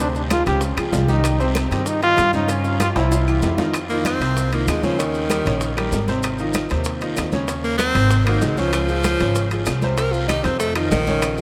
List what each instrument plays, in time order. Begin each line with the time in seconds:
Already playing: upright bass D2
0.00 grand piano C3 C4 C5, trombone D4, high conga, long guiro
0.14 trombone D4, high bongo, high conga, maracas
0.30 grand piano F3 F4 G#4, trombone F4, high bongo, high conga, high timbale, low timbale, short guiro, claves, maracas
0.46 upright bass C#2, grand piano C#3 C#4 C#5, trombone G4, high bongo, high timbale, short guiro, maracas
0.61 high bongo, high conga, long guiro, maracas
0.77 upright bass C#2, grand piano F3 F4 G#4, high bongo, high conga, high timbale, claves, maracas
0.92 upright bass C2, grand piano F3 F4 G#4, high bongo, low bongo, high conga, low timbale, short guiro, maracas
1.08 grand piano D#3 D#4 G4, trombone D#4, high conga, short guiro, maracas
1.24 high bongo, high timbale, long guiro, claves, maracas
1.39 grand piano C3 C4 C5, trombone C4, high bongo, high conga, maracas
1.55 high bongo, high conga, high timbale, low timbale, short guiro, claves, maracas
1.71 upright bass G2, grand piano D#3 D#4 G4, trombone C4, high bongo, high conga, high timbale, short guiro, maracas
1.86 trombone D#4, high bongo, high conga, long guiro, maracas
2.02 grand piano D#3 D#4 G4, trombone F4, high bongo, high conga, high timbale, maracas
2.17 upright bass G2, high bongo, low bongo, high conga, high timbale, low timbale, short guiro, claves, maracas
2.33 grand piano C#3 C#4 C#5, trombone D#4, high conga, short guiro, maracas
2.48 grand piano C#3 C#4 C#5, trombone C#4, high bongo, high conga, high timbale, long guiro, maracas
2.64 high bongo, high conga, maracas
2.80 grand piano F3 F4 G4, trombone F4, high bongo, high conga, high timbale, low timbale, short guiro, claves, maracas
2.95 upright bass C2, grand piano C3 C4 C5, trombone E4, low bongo, high timbale, short guiro, maracas
3.11 low bongo, high conga, high timbale, long guiro, maracas
3.27 grand piano E3 E4 G4, high conga, claves, maracas
3.42 upright bass F2, grand piano E3 E4 G4, high conga, low timbale, short guiro, maracas
3.58 grand piano D#3 D#4 F4, low bongo, high conga, low timbale, short guiro, maracas
3.74 high bongo, high conga, high timbale, long guiro, claves, maracas
3.89 grand piano D#3 D#4 F4, tenor saxophone A#3, high bongo, high conga, maracas
4.05 tenor saxophone C4, high bongo, high conga, high timbale, low timbale, short guiro, claves, maracas
4.20 upright bass C2, grand piano C3 C4 C5, high bongo, high conga, high timbale, short guiro, maracas
4.37 high bongo, high conga, long guiro, maracas
4.52 grand piano D#3 D#4 F4, tenor saxophone A#3, high bongo, high conga, high timbale, maracas
4.67 upright bass D#2, tenor saxophone G#3, high bongo, low bongo, high conga, high timbale, low timbale, short guiro, claves, maracas
4.83 grand piano C#3 C#4 C#5, tenor saxophone F3, high conga, short guiro, maracas
4.98 grand piano C#3 C#4 C#5, tenor saxophone D#3, high bongo, high conga, high timbale, long guiro, maracas
5.14 high bongo, high conga, maracas
5.30 grand piano G3 G4 A#4, high bongo, high conga, high timbale, low timbale, short guiro, claves, maracas
5.45 upright bass A#1, grand piano C#3 C#4 C#5, high timbale, short guiro, maracas
5.61 high bongo, high conga, long guiro, maracas
5.77 grand piano G3 G4 A#4, high bongo, high conga, high timbale, claves, maracas
5.92 upright bass G#1, high bongo, low bongo, high conga, low timbale, short guiro, maracas
6.08 grand piano C3 C4 C5, high conga, short guiro, maracas
6.23 high bongo, high conga, high timbale, long guiro, claves, maracas
6.38 grand piano D#3 D#4 F4, high bongo, high conga, maracas
6.54 high bongo, high conga, high timbale, low timbale, short guiro, claves, maracas
6.69 upright bass D#2, grand piano C3 C4 C5, high bongo, high conga, high timbale, short guiro, maracas
6.84 high bongo, high conga, long guiro, maracas
7.01 grand piano D#3 D#4 F4, high bongo, high conga, high timbale, maracas
7.17 upright bass D#2, high bongo, low bongo, high conga, high timbale, low timbale, short guiro, claves, maracas
7.32 grand piano C#3 C#4 C#5, high conga, short guiro, maracas
7.48 grand piano C#3 C#4 C#5, high bongo, high conga, high timbale, long guiro, maracas
7.64 tenor saxophone A#3, high bongo, high conga, maracas
7.78 grand piano F#3 F#4 A#4, tenor saxophone C4, high bongo, high conga, high timbale, low timbale, short guiro, claves, maracas
7.95 upright bass G#1, grand piano C3 C4 C5, high bongo, high timbale, short guiro, maracas
8.10 high bongo, high conga, long guiro, maracas
8.26 grand piano D#3 D#4 F#4, tenor saxophone A#3, high bongo, high conga, high timbale, claves, maracas
8.41 upright bass C#2, tenor saxophone G#3, high bongo, low bongo, high conga, low timbale, short guiro, maracas
8.57 grand piano C#3 C#4 C#5, tenor saxophone F3, high conga, short guiro, maracas
8.73 tenor saxophone F3, high bongo, high conga, high timbale, long guiro, claves, maracas
8.88 grand piano F3 F4 G#4, high bongo, high conga, maracas
9.04 high bongo, high conga, high timbale, low timbale, short guiro, claves, maracas
9.19 upright bass G#1, grand piano C#3 C#4 C#5, high bongo, high conga, high timbale, short guiro, maracas
9.35 high bongo, high conga, long guiro, maracas
9.51 grand piano F3 F4 G#4, high bongo, high conga, high timbale, maracas
9.66 upright bass C2, high bongo, low bongo, high conga, high timbale, low timbale, short guiro, claves, maracas
9.82 grand piano C3 C4 C5, high conga, short guiro, maracas
9.97 grand piano C3 C4 C5, tenor saxophone A#4, high bongo, high timbale, long guiro, maracas
10.12 tenor saxophone F4, high bongo, high conga, maracas
10.28 grand piano D#3 D#4 G4, tenor saxophone D#4, high bongo, high conga, high timbale, low timbale, short guiro, claves, maracas
10.43 upright bass F2, grand piano C3 C4 C5, tenor saxophone C4, high bongo, high timbale, short guiro, maracas
10.59 tenor saxophone A3, high bongo, high conga, long guiro, maracas
10.76 grand piano D#3 D#4 F4, tenor saxophone F3, high bongo, high conga, high timbale, claves, maracas
10.91 upright bass A#1, tenor saxophone D#3, high bongo, low bongo, high conga, low timbale, short guiro, maracas
11.06 grand piano C#3 C#4 C#5, high conga, short guiro, maracas
11.22 high bongo, high timbale, long guiro, claves, maracas
11.38 grand piano F3, high conga, maracas